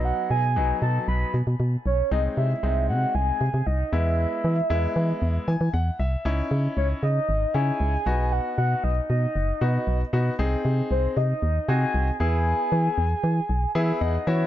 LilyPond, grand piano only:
\new Staff \with { instrumentName = "Grand piano" } { \time 4/4 \key cis \minor \tempo 4 = 116 << { r1 | r1 | r2 r8 gis''8 fis''8 e''8 | r1 |
r1 | r1 | r2 r8 gis''8 fis''8 e''8 | } \\ { <fis b dis'>8 r8 <fis b dis'>4. r4. | <gis bis dis'>8. r16 <gis bis dis'>4. r4 <gis b e'>8~ | <gis b e'>8 r8 <gis b e'>4. r4. | <cis' dis' e'>4. r4 <cis' dis' e'>8. r16 <b dis' fis'>8~ |
<b dis' fis'>4 r4. <b dis' fis'>8. r16 <b dis' fis'>8 | <bis dis' gis'>4. r4 <bis dis' fis'>8. r16 <b e' gis'>8~ | <b e' gis'>4 r4. <b e' gis'>8. r16 <b e' fis'>8 | } >> }